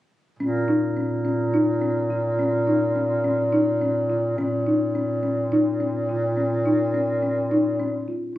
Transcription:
0.39 A#2 C#4
0.68 D#4
0.97 C#4
1.25 C#4
1.54 D#4
1.81 C#4
2.10 F4
2.39 C#4
2.67 D#4
2.96 C#4
3.24 C#4
3.53 D#4
3.81 C#4
4.10 F4
4.38 A#2 C#4
4.67 D#4
4.95 C#4
5.23 C#4
5.52 D#4
5.80 C#4
6.09 F4
6.37 C#4
6.66 D#4
6.94 C#4
7.23 C#4
7.51 D#4
7.80 C#4
8.08 F4

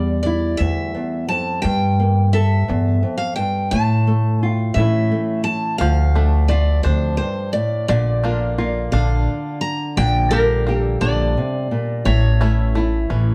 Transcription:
Already playing: E2 G3 D5
0.23 E4 D5
0.57 D2 E2 E5
0.95 E2
1.29 F2 A5
1.62 G2 G5
2.00 A#3
2.33 A4 E5
2.68 E2 G2
3.03 F2
3.18 F5
3.36 G2 G5
3.71 A2 A5
4.07 A3
4.43 F4 G5
4.74 A2 E3 A3 E5
4.78 C#4 E4
5.12 A3
5.44 A5
5.78 D2 F3 F5
6.15 A3 D4
6.48 A3 F4 D5
6.83 D2 F2 D4 C5
7.17 G2 C5
7.53 A2 D5
7.88 A#1 A#2 D3 D5
8.24 A#3 D4 F4
8.58 A#3 F4
8.92 A#1 D3 D4 F5
9.61 A#5
9.97 A#1 A#2 D3 G5
10.31 G3 A#3 D4 G4 A#4
10.67 A#3 G4
10.77 A4
11.01 A#1 D3 D4 D5
11.37 C3
11.71 A#2
12.05 A1 A2 E3 C#5
12.41 A3 C#4 E4
12.75 A3 E4
13.10 A1 E3 C#4

